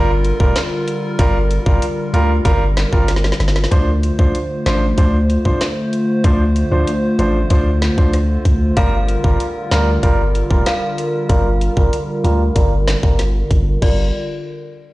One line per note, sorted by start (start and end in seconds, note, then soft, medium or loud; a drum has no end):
0.00 0.33 G1 loud
0.00 3.68 D3 medium
0.00 3.68 G3 medium
0.00 3.68 F4 medium
0.00 3.68 A#4 medium
0.25 closed hi-hat soft
0.40 0.53 F1 loud
0.40 0.57 G3 medium
0.40 0.57 F4 medium
0.40 0.57 A#4 medium
0.40 kick loud
0.56 cross-stick medium
0.56 snare loud
0.56 clap medium
0.56 closed hi-hat medium
0.88 closed hi-hat medium
1.19 1.59 G1 loud
1.19 1.36 G3 loud
1.19 1.36 F4 medium
1.19 1.36 A#4 loud
1.19 kick loud
1.19 closed hi-hat medium
1.51 closed hi-hat medium
1.66 1.80 G1 loud
1.66 1.83 G3 medium
1.66 1.83 F4 medium
1.66 1.83 A#4 medium
1.66 kick loud
1.82 closed hi-hat medium
2.13 2.40 D2 loud
2.13 2.30 G3 medium
2.13 2.31 F4 medium
2.13 2.31 A#4 medium
2.13 closed hi-hat medium
2.45 2.85 G1 loud
2.45 2.62 G3 medium
2.45 2.62 F4 medium
2.45 2.62 A#4 loud
2.45 kick loud
2.45 closed hi-hat medium
2.77 snare loud
2.77 clap medium
2.77 closed hi-hat soft
2.92 3.33 G1 medium
2.92 3.09 G3 medium
2.92 3.10 F4 medium
2.92 3.10 A#4 medium
2.92 kick medium
3.08 snare medium
3.08 closed hi-hat medium
3.16 snare medium
3.24 snare medium
3.32 snare medium
3.40 3.67 G1 medium
3.40 snare medium
3.40 closed hi-hat medium
3.48 snare medium
3.56 snare loud
3.64 snare loud
3.71 4.12 D2 loud
3.71 13.78 D3 medium
3.71 3.88 F3 medium
3.71 8.73 A3 medium
3.71 3.88 D4 medium
3.71 13.78 F4 medium
3.71 8.73 C5 medium
3.71 3.89 C5 loud
3.71 kick loud
3.71 closed hi-hat medium
4.03 closed hi-hat medium
4.19 4.32 D2 loud
4.19 4.36 F3 medium
4.19 4.36 D4 medium
4.19 4.36 C5 medium
4.19 kick loud
4.35 closed hi-hat medium
4.66 4.93 A1 medium
4.66 4.83 F3 medium
4.66 4.83 D4 medium
4.66 4.83 C5 medium
4.66 snare loud
4.66 clap medium
4.66 closed hi-hat soft
4.98 5.38 D2 loud
4.98 5.15 F3 medium
4.98 5.15 D4 medium
4.98 5.15 C5 loud
4.98 kick medium
4.98 closed hi-hat medium
5.30 closed hi-hat soft
5.45 5.59 C2 medium
5.45 5.62 F3 medium
5.45 5.62 D4 medium
5.45 5.62 C5 medium
5.45 kick medium
5.61 cross-stick loud
5.61 snare loud
5.61 clap medium
5.61 closed hi-hat medium
5.93 closed hi-hat medium
6.24 6.64 D2 loud
6.24 6.41 F3 loud
6.24 6.41 D4 medium
6.24 6.41 C5 loud
6.24 kick loud
6.24 closed hi-hat medium
6.56 closed hi-hat medium
6.71 6.85 D2 loud
6.71 6.88 F3 medium
6.71 6.89 D4 medium
6.71 6.89 C5 medium
6.87 closed hi-hat medium
7.19 7.46 A1 medium
7.19 7.36 F3 medium
7.19 7.36 D4 medium
7.19 7.36 C5 medium
7.19 closed hi-hat soft
7.50 7.91 D2 loud
7.50 7.67 F3 medium
7.50 7.68 D4 medium
7.50 7.68 C5 loud
7.50 kick medium
7.50 closed hi-hat medium
7.82 snare loud
7.82 clap medium
7.82 closed hi-hat soft
7.98 8.38 D2 medium
7.98 8.15 F3 medium
7.98 8.15 D4 medium
7.98 8.15 C5 medium
7.98 kick medium
8.13 cross-stick medium
8.13 closed hi-hat medium
8.45 8.72 D2 medium
8.45 kick medium
8.45 closed hi-hat medium
8.77 9.17 G1 loud
8.77 8.94 G3 medium
8.77 13.78 G3 medium
8.77 8.94 F4 medium
8.77 13.78 A#4 medium
8.77 8.94 A#4 loud
8.77 10.65 F5 loud
8.77 kick loud
8.77 closed hi-hat medium
9.08 closed hi-hat medium
9.24 9.38 G1 loud
9.24 9.41 G3 medium
9.24 9.41 F4 medium
9.24 9.41 A#4 medium
9.24 kick loud
9.40 closed hi-hat medium
9.71 9.98 D2 medium
9.71 9.88 G3 medium
9.71 9.89 F4 medium
9.71 9.89 A#4 medium
9.71 snare loud
9.71 clap medium
9.71 closed hi-hat medium
10.03 10.43 G1 loud
10.03 10.20 G3 medium
10.03 10.20 F4 medium
10.03 10.20 A#4 loud
10.03 kick medium
10.03 closed hi-hat medium
10.35 closed hi-hat soft
10.50 10.64 F1 medium
10.50 10.67 G3 medium
10.50 10.67 F4 medium
10.50 10.68 A#4 medium
10.50 kick medium
10.66 13.47 F5 loud
10.66 cross-stick medium
10.66 snare loud
10.66 clap medium
10.66 closed hi-hat medium
10.98 closed hi-hat medium
11.29 11.70 G1 loud
11.29 11.46 G3 medium
11.29 11.46 F4 medium
11.29 11.46 A#4 loud
11.29 kick loud
11.29 closed hi-hat medium
11.61 closed hi-hat medium
11.77 11.90 G1 loud
11.77 11.94 G3 medium
11.77 11.94 F4 medium
11.77 11.94 A#4 medium
11.77 kick loud
11.93 closed hi-hat medium
12.24 12.51 D2 medium
12.24 12.41 G3 medium
12.24 12.41 F4 medium
12.24 12.41 A#4 medium
12.24 closed hi-hat medium
12.55 12.96 G1 loud
12.55 12.72 G3 medium
12.55 12.73 F4 medium
12.55 12.73 A#4 loud
12.55 kick medium
12.55 closed hi-hat medium
12.88 snare loud
12.88 clap medium
12.88 closed hi-hat soft
13.03 13.43 G1 medium
13.03 13.20 G3 medium
13.03 13.20 F4 medium
13.03 13.20 A#4 medium
13.03 kick loud
13.19 snare medium
13.19 closed hi-hat medium
13.51 13.77 G1 loud
13.51 kick medium
13.51 closed hi-hat medium
13.82 14.12 G1 loud
13.82 14.11 D3 medium
13.82 14.05 G3 medium
13.82 14.11 G3 medium
13.82 14.06 F4 medium
13.82 14.12 F4 medium
13.82 14.11 A#4 medium
13.82 14.06 A#4 loud
13.82 14.12 D5 medium
13.82 kick loud
13.82 crash medium